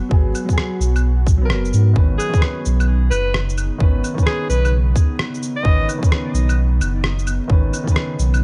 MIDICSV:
0, 0, Header, 1, 6, 480
1, 0, Start_track
1, 0, Tempo, 461538
1, 118, Time_signature, 4, 2, 24, 8
1, 8777, End_track
2, 0, Start_track
2, 0, Title_t, "Alto saxophone"
2, 0, Program_c, 0, 65
2, 2266, Note_on_c, 0, 68, 93
2, 2527, Note_off_c, 0, 68, 0
2, 3232, Note_on_c, 0, 71, 91
2, 3490, Note_off_c, 0, 71, 0
2, 4430, Note_on_c, 0, 68, 94
2, 4656, Note_off_c, 0, 68, 0
2, 4675, Note_on_c, 0, 71, 93
2, 4931, Note_off_c, 0, 71, 0
2, 5785, Note_on_c, 0, 75, 93
2, 6115, Note_off_c, 0, 75, 0
2, 8777, End_track
3, 0, Start_track
3, 0, Title_t, "Upright piano"
3, 0, Program_c, 1, 0
3, 0, Control_c, 1, 64, 127
3, 0, Note_on_c, 1, 54, 83
3, 0, Note_on_c, 1, 59, 80
3, 0, Note_on_c, 1, 68, 95
3, 95, Note_off_c, 1, 54, 0
3, 95, Note_on_c, 1, 54, 85
3, 114, Note_off_c, 1, 59, 0
3, 114, Note_on_c, 1, 59, 77
3, 116, Note_off_c, 1, 68, 0
3, 135, Note_on_c, 1, 68, 94
3, 453, Note_off_c, 1, 54, 0
3, 468, Note_on_c, 1, 54, 88
3, 472, Note_off_c, 1, 59, 0
3, 482, Note_off_c, 1, 68, 0
3, 509, Note_on_c, 1, 59, 79
3, 551, Note_on_c, 1, 68, 95
3, 1414, Note_off_c, 1, 54, 0
3, 1429, Note_on_c, 1, 54, 98
3, 1439, Note_off_c, 1, 59, 0
3, 1460, Note_off_c, 1, 68, 0
3, 1472, Note_on_c, 1, 59, 89
3, 1510, Note_on_c, 1, 70, 108
3, 1996, Note_off_c, 1, 54, 0
3, 2013, Note_on_c, 1, 51, 85
3, 2017, Note_off_c, 1, 59, 0
3, 2036, Note_off_c, 1, 70, 0
3, 2036, Note_on_c, 1, 61, 77
3, 2050, Control_c, 1, 64, 0
3, 2057, Note_on_c, 1, 71, 92
3, 2243, Control_c, 1, 64, 127
3, 2368, Note_off_c, 1, 51, 0
3, 2384, Note_on_c, 1, 51, 85
3, 2393, Note_off_c, 1, 61, 0
3, 2404, Note_off_c, 1, 71, 0
3, 2429, Note_on_c, 1, 61, 79
3, 2470, Note_on_c, 1, 71, 97
3, 3913, Note_off_c, 1, 51, 0
3, 3936, Note_off_c, 1, 61, 0
3, 3936, Note_on_c, 1, 51, 85
3, 3956, Note_off_c, 1, 71, 0
3, 3959, Note_on_c, 1, 61, 78
3, 3981, Note_on_c, 1, 71, 93
3, 4294, Note_off_c, 1, 51, 0
3, 4310, Note_on_c, 1, 51, 86
3, 4314, Note_off_c, 1, 61, 0
3, 4325, Note_off_c, 1, 71, 0
3, 4350, Note_on_c, 1, 61, 79
3, 4395, Note_on_c, 1, 71, 98
3, 5836, Note_off_c, 1, 51, 0
3, 5856, Note_off_c, 1, 61, 0
3, 5856, Note_on_c, 1, 51, 85
3, 5876, Note_on_c, 1, 61, 78
3, 5879, Note_off_c, 1, 71, 0
3, 5896, Note_on_c, 1, 71, 98
3, 6209, Note_off_c, 1, 51, 0
3, 6225, Note_on_c, 1, 51, 88
3, 6233, Note_off_c, 1, 61, 0
3, 6243, Note_off_c, 1, 71, 0
3, 6266, Note_on_c, 1, 61, 81
3, 6310, Note_on_c, 1, 71, 96
3, 7754, Note_off_c, 1, 51, 0
3, 7775, Note_off_c, 1, 61, 0
3, 7778, Note_on_c, 1, 51, 86
3, 7796, Note_off_c, 1, 71, 0
3, 7797, Note_on_c, 1, 61, 79
3, 7819, Note_on_c, 1, 71, 96
3, 8136, Note_off_c, 1, 51, 0
3, 8151, Note_on_c, 1, 51, 89
3, 8154, Note_off_c, 1, 61, 0
3, 8164, Note_off_c, 1, 71, 0
3, 8191, Note_on_c, 1, 61, 80
3, 8231, Note_on_c, 1, 71, 98
3, 8777, Note_off_c, 1, 51, 0
3, 8777, Note_off_c, 1, 61, 0
3, 8777, Note_off_c, 1, 71, 0
3, 8777, End_track
4, 0, Start_track
4, 0, Title_t, "Ambient pad"
4, 0, Program_c, 2, 92
4, 0, Note_on_c, 2, 54, 85
4, 0, Note_on_c, 2, 59, 79
4, 0, Note_on_c, 2, 66, 95
4, 1995, Note_off_c, 2, 54, 0
4, 1997, Note_off_c, 2, 66, 0
4, 2044, Note_on_c, 2, 49, 84
4, 2045, Note_on_c, 2, 63, 95
4, 8777, Note_off_c, 2, 49, 0
4, 8777, Note_off_c, 2, 59, 0
4, 8777, Note_off_c, 2, 63, 0
4, 8777, End_track
5, 0, Start_track
5, 0, Title_t, "Sub bass"
5, 0, Program_c, 3, 38
5, 115, Note_on_c, 3, 32, 100
5, 342, Note_off_c, 3, 32, 0
5, 834, Note_on_c, 3, 35, 104
5, 1561, Note_on_c, 3, 30, 83
5, 1577, Note_off_c, 3, 35, 0
5, 1785, Note_off_c, 3, 30, 0
5, 1804, Note_on_c, 3, 44, 99
5, 2027, Note_off_c, 3, 44, 0
5, 2038, Note_on_c, 3, 32, 100
5, 2264, Note_off_c, 3, 32, 0
5, 2768, Note_on_c, 3, 35, 105
5, 3231, Note_off_c, 3, 35, 0
5, 3236, Note_on_c, 3, 30, 94
5, 3850, Note_off_c, 3, 30, 0
5, 3957, Note_on_c, 3, 32, 99
5, 4183, Note_off_c, 3, 32, 0
5, 4675, Note_on_c, 3, 35, 104
5, 5145, Note_off_c, 3, 35, 0
5, 5875, Note_on_c, 3, 32, 100
5, 6102, Note_off_c, 3, 32, 0
5, 6594, Note_on_c, 3, 35, 102
5, 7064, Note_off_c, 3, 35, 0
5, 7076, Note_on_c, 3, 30, 90
5, 7690, Note_off_c, 3, 30, 0
5, 7795, Note_on_c, 3, 32, 100
5, 8022, Note_off_c, 3, 32, 0
5, 8518, Note_on_c, 3, 35, 106
5, 8777, Note_off_c, 3, 35, 0
5, 8777, End_track
6, 0, Start_track
6, 0, Title_t, "Drums"
6, 115, Note_on_c, 9, 36, 122
6, 219, Note_off_c, 9, 36, 0
6, 363, Note_on_c, 9, 75, 34
6, 363, Note_on_c, 9, 82, 53
6, 467, Note_off_c, 9, 75, 0
6, 467, Note_off_c, 9, 82, 0
6, 508, Note_on_c, 9, 36, 65
6, 514, Note_on_c, 9, 82, 31
6, 600, Note_on_c, 9, 37, 115
6, 612, Note_off_c, 9, 36, 0
6, 618, Note_off_c, 9, 82, 0
6, 704, Note_off_c, 9, 37, 0
6, 844, Note_on_c, 9, 82, 58
6, 948, Note_off_c, 9, 82, 0
6, 997, Note_on_c, 9, 75, 60
6, 997, Note_on_c, 9, 82, 31
6, 1101, Note_off_c, 9, 75, 0
6, 1101, Note_off_c, 9, 82, 0
6, 1317, Note_on_c, 9, 36, 108
6, 1326, Note_on_c, 9, 82, 54
6, 1421, Note_off_c, 9, 36, 0
6, 1430, Note_off_c, 9, 82, 0
6, 1559, Note_on_c, 9, 37, 107
6, 1663, Note_off_c, 9, 37, 0
6, 1715, Note_on_c, 9, 82, 31
6, 1800, Note_off_c, 9, 82, 0
6, 1800, Note_on_c, 9, 82, 54
6, 1904, Note_off_c, 9, 82, 0
6, 2037, Note_on_c, 9, 36, 121
6, 2141, Note_off_c, 9, 36, 0
6, 2285, Note_on_c, 9, 75, 33
6, 2285, Note_on_c, 9, 82, 53
6, 2389, Note_off_c, 9, 75, 0
6, 2389, Note_off_c, 9, 82, 0
6, 2430, Note_on_c, 9, 36, 110
6, 2436, Note_on_c, 9, 82, 30
6, 2517, Note_on_c, 9, 37, 106
6, 2534, Note_off_c, 9, 36, 0
6, 2540, Note_off_c, 9, 82, 0
6, 2621, Note_off_c, 9, 37, 0
6, 2759, Note_on_c, 9, 82, 55
6, 2863, Note_off_c, 9, 82, 0
6, 2914, Note_on_c, 9, 75, 65
6, 2914, Note_on_c, 9, 82, 30
6, 3018, Note_off_c, 9, 75, 0
6, 3018, Note_off_c, 9, 82, 0
6, 3239, Note_on_c, 9, 75, 62
6, 3239, Note_on_c, 9, 82, 53
6, 3343, Note_off_c, 9, 75, 0
6, 3343, Note_off_c, 9, 82, 0
6, 3476, Note_on_c, 9, 37, 108
6, 3580, Note_off_c, 9, 37, 0
6, 3632, Note_on_c, 9, 82, 30
6, 3719, Note_off_c, 9, 82, 0
6, 3719, Note_on_c, 9, 75, 48
6, 3719, Note_on_c, 9, 82, 51
6, 3823, Note_off_c, 9, 75, 0
6, 3823, Note_off_c, 9, 82, 0
6, 3956, Note_on_c, 9, 36, 115
6, 4060, Note_off_c, 9, 36, 0
6, 4202, Note_on_c, 9, 75, 35
6, 4202, Note_on_c, 9, 82, 50
6, 4306, Note_off_c, 9, 75, 0
6, 4306, Note_off_c, 9, 82, 0
6, 4349, Note_on_c, 9, 36, 62
6, 4356, Note_on_c, 9, 82, 31
6, 4438, Note_on_c, 9, 37, 105
6, 4453, Note_off_c, 9, 36, 0
6, 4460, Note_off_c, 9, 82, 0
6, 4542, Note_off_c, 9, 37, 0
6, 4680, Note_on_c, 9, 82, 55
6, 4784, Note_off_c, 9, 82, 0
6, 4835, Note_on_c, 9, 75, 63
6, 4835, Note_on_c, 9, 82, 30
6, 4939, Note_off_c, 9, 75, 0
6, 4939, Note_off_c, 9, 82, 0
6, 5154, Note_on_c, 9, 36, 106
6, 5158, Note_on_c, 9, 82, 54
6, 5258, Note_off_c, 9, 36, 0
6, 5262, Note_off_c, 9, 82, 0
6, 5400, Note_on_c, 9, 37, 102
6, 5504, Note_off_c, 9, 37, 0
6, 5558, Note_on_c, 9, 82, 30
6, 5643, Note_off_c, 9, 82, 0
6, 5643, Note_on_c, 9, 82, 52
6, 5747, Note_off_c, 9, 82, 0
6, 5875, Note_on_c, 9, 36, 116
6, 5979, Note_off_c, 9, 36, 0
6, 6125, Note_on_c, 9, 75, 37
6, 6125, Note_on_c, 9, 82, 54
6, 6229, Note_off_c, 9, 75, 0
6, 6229, Note_off_c, 9, 82, 0
6, 6269, Note_on_c, 9, 36, 106
6, 6279, Note_on_c, 9, 82, 31
6, 6366, Note_on_c, 9, 37, 105
6, 6373, Note_off_c, 9, 36, 0
6, 6383, Note_off_c, 9, 82, 0
6, 6470, Note_off_c, 9, 37, 0
6, 6602, Note_on_c, 9, 82, 54
6, 6706, Note_off_c, 9, 82, 0
6, 6753, Note_on_c, 9, 75, 69
6, 6753, Note_on_c, 9, 82, 31
6, 6857, Note_off_c, 9, 75, 0
6, 6857, Note_off_c, 9, 82, 0
6, 7085, Note_on_c, 9, 75, 66
6, 7085, Note_on_c, 9, 82, 55
6, 7189, Note_off_c, 9, 75, 0
6, 7189, Note_off_c, 9, 82, 0
6, 7320, Note_on_c, 9, 37, 104
6, 7424, Note_off_c, 9, 37, 0
6, 7477, Note_on_c, 9, 82, 30
6, 7561, Note_off_c, 9, 82, 0
6, 7561, Note_on_c, 9, 75, 54
6, 7561, Note_on_c, 9, 82, 54
6, 7665, Note_off_c, 9, 75, 0
6, 7665, Note_off_c, 9, 82, 0
6, 7797, Note_on_c, 9, 36, 118
6, 7901, Note_off_c, 9, 36, 0
6, 8045, Note_on_c, 9, 75, 38
6, 8045, Note_on_c, 9, 82, 57
6, 8149, Note_off_c, 9, 75, 0
6, 8149, Note_off_c, 9, 82, 0
6, 8190, Note_on_c, 9, 36, 62
6, 8195, Note_on_c, 9, 82, 33
6, 8280, Note_on_c, 9, 37, 104
6, 8294, Note_off_c, 9, 36, 0
6, 8299, Note_off_c, 9, 82, 0
6, 8384, Note_off_c, 9, 37, 0
6, 8521, Note_on_c, 9, 82, 59
6, 8625, Note_off_c, 9, 82, 0
6, 8673, Note_on_c, 9, 75, 67
6, 8673, Note_on_c, 9, 82, 31
6, 8777, Note_off_c, 9, 75, 0
6, 8777, Note_off_c, 9, 82, 0
6, 8777, End_track
0, 0, End_of_file